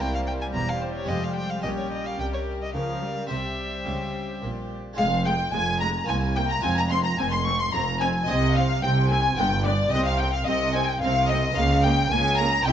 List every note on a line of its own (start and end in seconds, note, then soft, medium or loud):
0.00 0.50 C2 medium
0.00 0.51 C2 soft
0.00 0.51 C2 medium
0.00 1.61 G3 medium
0.00 1.04 A#3 soft
0.00 1.05 C4 soft
0.00 1.06 E4 soft
0.00 0.52 A#4 soft
0.00 0.53 C5 medium
0.00 0.14 G5 medium
0.15 0.20 F5 medium
0.27 0.33 G5 medium
0.41 0.47 G#5 medium
0.53 1.05 E1 medium
0.53 1.06 E2 soft
0.53 1.06 E2 medium
0.53 1.62 G4 medium
0.53 1.62 C5 soft
0.53 0.70 A#5 medium
0.69 0.83 F5 medium
0.81 0.94 C5 medium
0.95 1.10 C#5 medium
1.04 1.60 G#3 soft
1.04 1.61 C4 soft
1.04 1.62 F4 soft
1.04 1.25 D#5 medium
1.09 1.60 F1 medium
1.09 1.60 F2 soft
1.09 1.61 F2 medium
1.24 1.35 F5 medium
1.36 1.51 G5 medium
1.50 1.62 F5 medium
1.61 2.15 A#1 medium
1.61 2.15 A#2 soft
1.61 2.16 A#2 medium
1.61 3.25 C#4 soft
1.61 3.26 G4 soft
1.61 2.72 G4 medium
1.61 2.17 A#4 medium
1.61 1.68 D#5 medium
1.66 2.73 G3 medium
1.78 1.91 C#5 medium
1.92 2.07 D#5 medium
2.06 2.19 F5 medium
2.18 2.71 C2 medium
2.18 2.71 C3 medium
2.18 2.71 C3 soft
2.18 2.73 A#4 soft
2.18 2.25 G5 medium
2.33 2.41 C#5 medium
2.62 2.74 D#5 medium
2.74 3.26 C#2 medium
2.74 3.26 C#3 soft
2.74 3.27 C#3 medium
2.74 3.02 F3 medium
2.74 3.31 A#4 soft
2.74 3.30 A#4 soft
2.74 3.29 F5 medium
3.03 3.30 G3 medium
3.27 3.82 C2 medium
3.27 3.82 C3 soft
3.27 3.83 C3 medium
3.27 4.92 C4 soft
3.27 4.93 G4 soft
3.27 4.75 G4 soft
3.27 4.40 E5 medium
3.31 4.75 G3 soft
3.31 4.78 C5 soft
3.85 4.38 C#2 medium
3.85 4.37 C#3 soft
3.85 4.39 C#3 medium
4.42 4.94 A#1 medium
4.42 4.94 A#2 soft
4.42 4.94 A#2 medium
4.93 6.03 G#3 medium
4.93 6.03 C4 medium
4.93 6.04 F4 medium
4.98 5.47 F1 medium
4.98 5.44 F2 medium
4.98 5.47 F2 medium
4.98 5.07 G#3 medium
4.98 5.06 F5 medium
4.98 5.24 F5 medium
5.25 5.34 G#3 medium
5.25 5.33 G5 medium
5.25 5.53 G5 medium
5.52 6.02 F1 medium
5.52 5.99 F2 medium
5.52 6.03 F2 medium
5.52 5.62 G#3 medium
5.52 5.81 G#5 medium
5.52 5.80 G#5 medium
5.52 5.81 G#5 loud
5.80 5.89 G#3 medium
5.80 5.88 A#5 medium
5.80 5.89 A#5 medium
5.80 6.08 A#5 medium
6.04 6.60 A#3 medium
6.04 6.60 C4 medium
6.04 6.61 E4 medium
6.04 6.36 G#5 medium
6.08 6.54 C2 medium
6.08 6.57 C2 medium
6.08 6.58 C2 medium
6.08 6.17 A#3 medium
6.08 6.16 G#5 medium
6.08 6.17 G#5 medium
6.35 6.44 A#3 medium
6.35 6.49 G5 medium
6.35 6.50 G5 loud
6.35 6.41 G5 medium
6.49 6.55 A#5 medium
6.49 6.63 A#5 medium
6.49 6.62 A#5 medium
6.60 7.12 F1 medium
6.60 7.12 F2 medium
6.60 8.23 G#3 medium
6.60 8.23 C4 medium
6.60 6.71 C4 medium
6.60 8.24 F4 medium
6.60 6.77 G#5 loud
6.60 6.68 G#5 medium
6.60 6.77 G#5 medium
6.64 7.09 F2 medium
6.77 6.82 A#5 medium
6.77 6.83 A#5 medium
6.77 6.91 A#5 medium
6.90 6.99 C4 medium
6.90 6.96 C6 medium
6.90 7.04 C6 medium
6.90 7.05 C6 loud
7.04 7.09 A#5 medium
7.04 7.20 A#5 medium
7.04 7.19 A#5 loud
7.18 7.67 F1 medium
7.18 7.64 F2 medium
7.18 7.67 F2 medium
7.18 7.27 C4 medium
7.18 7.32 G#5 medium
7.18 7.30 G#5 medium
7.18 7.24 G#5 loud
7.31 7.46 C6 medium
7.31 7.38 C6 medium
7.44 7.55 C4 medium
7.44 7.59 C#6 medium
7.44 7.61 C#6 medium
7.44 7.59 C#6 loud
7.59 7.73 C6 medium
7.59 7.74 C6 medium
7.73 8.22 F1 medium
7.73 8.19 F2 medium
7.73 8.22 F2 medium
7.73 7.82 C4 medium
7.73 8.01 A#5 loud
7.73 8.01 A#5 medium
7.73 7.81 A#5 medium
8.00 8.10 C4 medium
8.00 8.28 G#5 loud
8.00 8.08 G#5 medium
8.00 8.09 G#5 medium
8.25 8.77 C2 medium
8.25 8.73 C3 medium
8.25 9.33 C4 medium
8.25 8.37 C4 medium
8.25 9.34 G4 medium
8.25 8.54 D#5 medium
8.25 8.58 D#5 medium
8.25 8.56 D#5 loud
8.30 8.77 C3 medium
8.54 8.64 C4 medium
8.54 8.82 F5 medium
8.54 8.83 F5 medium
8.54 8.82 F5 medium
8.82 9.31 C2 medium
8.82 9.28 C3 medium
8.82 9.32 C3 medium
8.82 8.91 C4 medium
8.82 9.10 G5 medium
8.82 8.91 G5 medium
8.82 9.10 G5 medium
9.08 9.19 C4 medium
9.08 9.37 G#5 medium
9.08 9.38 G#5 medium
9.08 9.40 G#5 medium
9.35 9.86 G1 medium
9.35 9.83 G2 medium
9.35 9.86 G2 medium
9.35 9.89 B3 medium
9.35 9.90 F4 medium
9.35 9.64 G5 medium
9.39 9.47 B3 medium
9.39 9.68 G5 medium
9.64 9.74 B3 medium
9.64 9.91 D5 medium
9.64 9.92 D5 medium
9.64 9.93 D5 medium
9.89 10.41 C2 medium
9.89 10.37 C3 medium
9.89 11.50 C4 medium
9.89 11.51 G4 medium
9.89 10.06 D#5 loud
9.89 10.06 D#5 medium
9.93 10.41 C3 medium
9.93 10.02 C4 medium
9.93 10.05 D#5 medium
10.04 10.19 F5 medium
10.04 10.21 F5 medium
10.04 10.20 F5 medium
10.18 10.29 C4 medium
10.18 10.33 G5 medium
10.33 10.47 F5 medium
10.33 10.46 F5 medium
10.33 10.47 F5 medium
10.45 10.95 C2 medium
10.45 10.92 C3 medium
10.45 10.96 C3 medium
10.45 10.56 C4 medium
10.45 10.73 D#5 medium
10.45 10.76 D#5 medium
10.45 10.74 D#5 medium
10.73 10.84 C4 medium
10.73 10.87 G#5 loud
10.73 10.88 G#5 medium
10.73 10.90 G#5 medium
10.87 11.01 G5 medium
11.00 11.50 C2 medium
11.00 11.47 C3 medium
11.00 11.50 C3 medium
11.00 11.11 C4 medium
11.00 11.27 F5 medium
11.00 11.28 F5 medium
11.00 11.30 F5 medium
11.27 11.35 D#5 loud
11.27 11.56 D#5 medium
11.27 11.57 D#5 medium
11.31 11.39 C4 medium
11.53 12.04 C#2 medium
11.53 12.05 C#3 medium
11.53 12.02 C#3 medium
11.53 12.61 F4 medium
11.53 12.62 A#4 medium
11.53 11.83 F5 loud
11.53 11.83 F5 medium
11.53 11.85 F5 medium
11.58 11.66 A#3 medium
11.83 11.93 A#3 medium
11.83 12.11 G5 loud
11.83 12.10 G5 medium
11.83 12.13 G5 medium
12.09 12.59 C#2 medium
12.09 12.59 C#3 medium
12.09 12.57 C#3 medium
12.09 12.20 A#3 medium
12.09 12.37 G#5 loud
12.09 12.40 G#5 loud
12.37 12.47 A#3 medium
12.37 12.65 A#5 medium
12.37 12.65 A#5 loud
12.37 12.66 A#5 medium
12.61 12.72 C4 medium
12.61 12.72 E4 medium
12.61 12.72 G4 medium
12.61 12.72 G5 loud
12.65 12.72 C2 medium
12.65 12.72 C3 medium
12.65 12.72 E4 medium
12.65 12.72 G5 loud